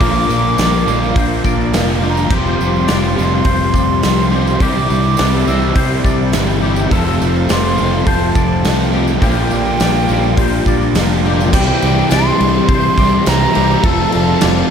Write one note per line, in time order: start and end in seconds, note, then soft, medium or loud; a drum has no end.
0.00 0.28 A#1 medium
0.00 0.84 A#2 medium
0.00 0.58 A#2 medium
0.00 0.58 D3 medium
0.00 0.87 F3 loud
0.00 0.58 F3 medium
0.00 0.33 A#3 medium
0.00 0.85 A#3 loud
0.00 2.28 D4 medium
0.00 0.31 D4 medium
0.00 0.31 F4 medium
0.00 2.27 A#4 medium
0.00 0.58 A#4 medium
0.00 4.57 F5 medium
0.00 2.28 A#5 medium
0.00 1.76 D6 loud
0.00 kick loud
0.00 open hi-hat medium
0.00 tambourine soft
0.15 tambourine soft
0.29 0.56 A#1 medium
0.29 0.59 D4 medium
0.29 0.61 F4 medium
0.29 tambourine medium
0.34 0.58 A#3 medium
0.58 0.86 A#1 medium
0.58 1.16 D3 medium
0.58 1.72 F3 medium
0.58 0.91 A#3 medium
0.58 0.89 D4 medium
0.58 0.89 F4 medium
0.58 1.16 D5 medium
0.58 snare loud
0.58 open hi-hat medium
0.58 tambourine medium
0.74 tambourine soft
0.86 1.14 A#1 medium
0.86 2.30 A#2 medium
0.86 2.30 F3 medium
0.86 2.29 A#3 medium
0.86 1.72 A#3 medium
0.86 1.74 F4 medium
0.86 tambourine medium
0.90 1.73 A#3 soft
0.90 1.74 D4 medium
1.03 tambourine soft
1.16 1.43 A#1 medium
1.16 1.45 C5 medium
1.16 kick loud
1.16 open hi-hat medium
1.16 tambourine soft
1.45 1.72 A#1 medium
1.45 2.02 D5 medium
1.45 kick medium
1.45 tambourine medium
1.61 tambourine soft
1.73 2.30 F1 medium
1.73 2.29 D3 medium
1.73 2.29 F3 medium
1.73 2.04 A#3 medium
1.73 2.02 D4 medium
1.73 2.02 F4 medium
1.73 snare loud
1.73 open hi-hat medium
1.73 tambourine medium
2.03 2.31 A#3 medium
2.03 2.30 D4 medium
2.03 2.30 F4 medium
2.03 2.30 G4 medium
2.03 tambourine soft
2.08 2.35 A#5 medium
2.17 tambourine medium
2.28 2.58 F1 medium
2.28 3.15 F2 medium
2.28 3.16 C3 medium
2.28 2.89 F3 medium
2.28 6.87 G4 medium
2.28 4.31 G4 medium
2.28 4.58 C5 medium
2.28 9.17 C6 medium
2.28 kick loud
2.28 crash medium
2.28 tambourine soft
2.32 3.14 F3 loud
2.32 2.62 G3 medium
2.32 2.61 C4 medium
2.32 2.59 F4 loud
2.32 3.17 C6 medium
2.46 tambourine soft
2.60 2.87 F1 medium
2.60 2.91 G3 medium
2.60 2.92 C4 medium
2.60 2.92 F4 medium
2.60 tambourine medium
2.76 tambourine soft
2.87 3.17 F1 medium
2.87 3.47 F3 medium
2.87 3.20 G3 medium
2.87 3.45 D5 medium
2.87 snare loud
2.87 open hi-hat medium
2.87 tambourine medium
2.92 3.19 C4 medium
2.92 3.16 F4 medium
3.15 3.45 F1 medium
3.15 4.60 F2 medium
3.15 4.58 C3 medium
3.15 4.58 F3 medium
3.15 4.04 F4 medium
3.15 4.64 C6 loud
3.15 tambourine medium
3.20 4.02 G3 medium
3.20 4.04 C4 medium
3.44 3.73 F1 medium
3.44 3.74 C5 medium
3.44 kick medium
3.44 open hi-hat soft
3.44 tambourine soft
3.74 4.02 F1 medium
3.74 4.31 D5 medium
3.74 kick medium
3.74 tambourine medium
4.03 4.59 C2 loud
4.03 4.59 F3 medium
4.03 4.34 G3 medium
4.03 4.33 C4 medium
4.03 4.30 F4 medium
4.03 snare loud
4.03 open hi-hat medium
4.03 tambourine medium
4.31 4.61 G3 medium
4.31 4.63 C4 medium
4.31 4.59 F4 medium
4.31 4.61 G4 medium
4.31 tambourine soft
4.47 tambourine medium
4.59 4.88 C2 medium
4.59 5.45 C3 medium
4.59 5.19 C3 medium
4.59 5.17 E3 medium
4.59 5.46 G3 loud
4.59 5.44 C4 loud
4.59 5.18 G4 medium
4.59 6.90 E5 medium
4.59 5.49 D6 loud
4.59 kick loud
4.59 open hi-hat medium
4.59 tambourine soft
4.63 4.90 G3 medium
4.63 4.90 C4 medium
4.63 4.88 E4 loud
4.63 6.91 D5 medium
4.76 tambourine soft
4.89 5.17 C2 medium
4.89 5.18 G3 medium
4.89 5.20 C4 medium
4.89 5.20 E4 medium
4.89 tambourine medium
5.04 tambourine soft
5.17 5.47 C2 medium
5.17 5.76 E3 medium
5.17 5.48 G3 medium
5.17 5.48 C4 medium
5.17 5.75 D5 medium
5.17 snare loud
5.17 open hi-hat medium
5.17 tambourine medium
5.21 5.46 E4 medium
5.45 5.75 C2 medium
5.45 6.90 C3 medium
5.45 6.90 G3 medium
5.45 6.89 C4 medium
5.45 6.35 E4 medium
5.45 6.05 E6 medium
5.45 tambourine medium
5.49 6.34 G3 medium
5.49 6.34 C4 medium
5.75 6.03 C2 medium
5.75 6.05 C5 medium
5.75 kick loud
5.75 open hi-hat medium
5.75 tambourine soft
6.04 6.32 C2 medium
6.04 6.63 D5 medium
6.04 kick medium
6.04 tambourine medium
6.33 6.89 G1 medium
6.33 6.90 E3 medium
6.33 6.63 G3 medium
6.33 6.62 C4 medium
6.33 6.59 E4 medium
6.33 snare loud
6.33 open hi-hat medium
6.33 tambourine loud
6.61 6.91 G3 medium
6.61 6.90 C4 medium
6.61 6.89 E4 medium
6.61 6.92 G4 medium
6.61 tambourine soft
6.76 tambourine medium
6.89 7.18 F1 medium
6.89 7.75 F2 medium
6.89 7.49 F2 medium
6.89 7.49 C3 medium
6.89 7.76 C3 loud
6.89 7.21 F3 medium
6.89 7.76 F3 loud
6.89 7.20 A3 medium
6.89 7.19 C4 medium
6.89 7.19 F4 medium
6.89 7.50 A4 loud
6.89 9.21 A4 medium
6.89 9.21 C5 medium
6.89 9.21 F5 medium
6.89 kick loud
6.89 open hi-hat medium
6.89 tambourine soft
7.06 tambourine soft
7.20 7.48 F1 medium
7.20 7.47 F3 medium
7.20 7.47 A3 medium
7.20 7.48 C4 medium
7.20 7.50 F4 medium
7.20 tambourine medium
7.35 tambourine soft
7.47 7.77 F1 medium
7.47 7.78 F3 medium
7.47 7.77 A3 medium
7.47 7.76 C4 medium
7.47 7.75 F4 medium
7.47 8.07 D5 medium
7.47 8.08 C6 loud
7.47 snare loud
7.47 open hi-hat medium
7.47 tambourine medium
7.75 9.21 F2 medium
7.75 9.20 C3 medium
7.75 9.20 F3 medium
7.75 8.63 F3 medium
7.75 8.64 A3 medium
7.75 8.65 C4 medium
7.75 8.66 F4 medium
7.75 tambourine medium
7.80 8.06 F1 medium
7.80 8.65 F4 medium
8.06 8.34 F1 loud
8.06 8.36 C5 loud
8.06 8.93 A5 medium
8.06 kick loud
8.06 open hi-hat medium
8.06 tambourine soft
8.35 8.63 F1 medium
8.35 8.94 D5 medium
8.35 kick medium
8.35 tambourine medium
8.64 9.19 C2 medium
8.64 8.94 F3 medium
8.64 8.93 A3 medium
8.64 8.93 C4 medium
8.64 8.91 F4 medium
8.64 snare loud
8.64 open hi-hat medium
8.64 tambourine medium
8.92 9.22 F3 medium
8.92 9.21 A3 medium
8.92 9.21 C4 medium
8.92 9.20 F4 medium
8.92 9.21 G4 medium
8.92 tambourine soft
9.08 tambourine medium
9.20 9.49 A#1 medium
9.20 10.06 A#2 loud
9.20 9.80 A#2 medium
9.20 9.79 D3 medium
9.20 10.07 F3 medium
9.20 9.78 F3 medium
9.20 9.52 A#3 medium
9.20 10.06 A#3 loud
9.20 9.51 D4 medium
9.20 9.50 F4 loud
9.20 9.80 G4 medium
9.20 11.51 D5 medium
9.20 11.51 F5 medium
9.20 10.91 G5 loud
9.20 11.51 A#5 medium
9.20 kick loud
9.20 open hi-hat medium
9.20 tambourine soft
9.24 11.52 G4 medium
9.51 9.79 A#1 medium
9.51 9.80 A#3 medium
9.51 9.81 D4 medium
9.51 9.81 F4 medium
9.51 tambourine medium
9.65 tambourine soft
9.79 10.08 A#1 medium
9.79 10.38 D3 medium
9.79 10.37 F3 medium
9.79 10.09 A#3 medium
9.79 10.09 D4 medium
9.79 10.08 F4 medium
9.79 10.38 D5 medium
9.79 snare loud
9.79 open hi-hat medium
9.79 tambourine medium
10.07 10.37 A#1 medium
10.07 11.52 A#2 medium
10.07 11.52 F3 medium
10.07 11.51 A#3 medium
10.07 10.94 A#3 medium
10.07 10.95 D4 medium
10.07 10.96 F4 medium
10.07 tambourine medium
10.23 tambourine soft
10.37 10.65 A#1 medium
10.37 10.67 C5 medium
10.37 kick loud
10.37 open hi-hat medium
10.37 tambourine soft
10.53 tambourine soft
10.66 10.94 A#1 medium
10.66 11.25 D5 medium
10.66 kick medium
10.66 tambourine medium
10.81 tambourine soft
10.95 11.50 F1 medium
10.95 11.51 D3 medium
10.95 11.52 F3 medium
10.95 11.24 A#3 medium
10.95 11.23 D4 medium
10.95 11.21 F4 medium
10.95 snare loud
10.95 open hi-hat medium
10.95 tambourine medium
11.22 11.52 A#3 medium
11.22 11.51 D4 medium
11.22 11.51 F4 medium
11.22 11.53 G4 medium
11.22 tambourine soft
11.40 tambourine medium
11.52 11.72 C2 loud
11.52 13.53 C3 medium
11.52 13.54 E3 medium
11.52 13.54 G3 medium
11.52 13.54 C4 loud
11.52 13.52 E4 loud
11.52 13.82 G4 medium
11.52 12.11 G4 loud
11.52 13.83 D5 medium
11.52 13.82 E5 medium
11.52 11.66 G5 medium
11.52 14.70 C6 loud
11.52 kick loud
11.52 crash loud
11.52 crash medium
11.56 11.81 G4 loud
11.67 12.11 G5 loud
11.82 12.02 C2 medium
11.82 12.10 G3 medium
11.82 12.11 C4 medium
11.82 12.11 G4 medium
11.82 crash medium
12.10 12.30 C2 loud
12.10 13.23 E3 medium
12.10 12.99 G3 medium
12.10 12.99 C4 medium
12.10 12.97 G4 medium
12.10 12.68 D5 medium
12.10 12.68 C6 loud
12.10 snare loud
12.10 tambourine medium
12.10 crash medium
12.40 12.59 C2 medium
12.40 crash medium
12.69 12.88 C2 medium
12.69 12.97 C5 medium
12.69 13.30 C6 loud
12.69 kick loud
12.69 crash medium
12.98 13.17 C2 medium
12.98 13.24 G3 medium
12.98 13.25 C4 medium
12.98 13.26 G4 medium
12.98 13.55 D5 medium
12.98 kick medium
12.98 crash medium
13.25 13.46 C2 loud
13.25 13.82 E3 medium
13.25 13.56 G3 medium
13.25 13.55 C4 medium
13.25 13.54 G4 medium
13.25 13.87 A#5 loud
13.25 snare loud
13.25 tambourine medium
13.25 crash medium
13.54 13.75 C2 loud
13.54 13.83 C3 medium
13.54 13.83 E3 medium
13.54 13.82 G3 medium
13.54 13.86 C4 medium
13.54 13.82 E4 medium
13.54 13.82 G4 medium
13.54 13.84 G4 medium
13.54 crash medium
13.83 14.03 F1 medium
13.83 14.70 F2 loud
13.83 14.70 C3 medium
13.83 14.70 F3 medium
13.83 14.70 A3 loud
13.83 14.70 C4 loud
13.83 14.70 F4 loud
13.83 14.70 A4 medium
13.83 14.42 A4 loud
13.83 14.70 C5 medium
13.83 14.70 F5 medium
13.83 14.14 A5 loud
13.83 kick loud
13.83 crash medium
14.11 14.33 F1 medium
14.11 14.40 A3 medium
14.11 14.41 C4 medium
14.11 14.42 F4 medium
14.11 crash medium
14.16 14.68 A5 loud
14.41 14.62 F1 medium
14.41 14.70 F3 medium
14.41 14.70 A3 medium
14.41 14.70 C4 medium
14.41 14.70 F4 medium
14.41 14.70 D5 medium
14.41 snare loud
14.41 tambourine medium
14.41 crash medium